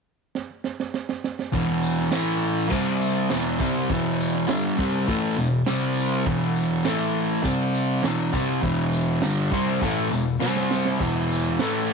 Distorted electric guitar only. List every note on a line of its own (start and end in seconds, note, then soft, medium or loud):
1.52 2.11 E2 medium
1.52 2.11 B2 medium
1.52 2.11 E3 loud
2.11 2.70 A2 loud
2.11 2.71 E3 loud
2.11 2.72 A3 loud
2.70 3.29 C3 medium
2.70 3.29 G3 medium
2.70 3.30 C4 loud
3.30 3.59 E2 medium
3.30 3.59 B2 loud
3.30 3.60 E3 loud
3.60 3.89 C3 medium
3.60 3.89 G3 loud
3.60 3.89 C4 loud
3.89 4.48 E2 loud
3.89 4.48 B2 medium
3.89 4.49 E3 loud
4.48 4.77 G2 medium
4.48 4.77 D3 loud
4.48 4.77 G3 loud
4.78 5.07 C3 medium
4.78 5.07 G3 loud
4.78 5.08 C4 medium
5.08 5.37 A2 loud
5.08 5.37 E3 loud
5.08 5.37 A3 loud
5.37 5.61 E2 medium
5.37 5.61 B2 medium
5.66 6.25 C3 medium
5.66 6.26 G3 loud
5.66 6.26 C4 loud
6.25 6.84 E2 loud
6.25 6.84 B2 medium
6.25 6.84 E3 loud
6.84 7.43 A2 loud
6.84 7.43 E3 loud
6.84 7.44 A3 loud
7.43 8.02 C3 loud
7.43 8.03 G3 medium
7.43 8.03 C4 loud
8.03 8.32 E2 medium
8.03 8.33 B2 loud
8.03 8.33 E3 loud
8.33 8.62 C3 medium
8.33 8.62 G3 medium
8.33 8.63 C4 loud
8.61 9.21 E2 medium
8.61 9.21 B2 loud
8.61 9.22 E3 loud
9.22 9.51 G2 medium
9.22 9.52 D3 loud
9.22 9.52 G3 loud
9.52 9.81 C3 medium
9.52 9.81 G3 medium
9.52 9.81 C4 loud
9.81 10.11 A2 medium
9.81 10.11 E3 medium
9.81 10.11 A3 loud
10.10 10.35 E2 medium
10.10 10.35 B2 medium
10.40 10.99 C3 medium
10.40 10.99 G3 loud
10.40 10.99 C4 loud
10.99 11.58 E2 medium
10.99 11.59 B2 loud
10.99 11.59 E3 loud
11.60 11.93 A2 medium
11.60 11.93 E3 loud
11.60 11.93 A3 loud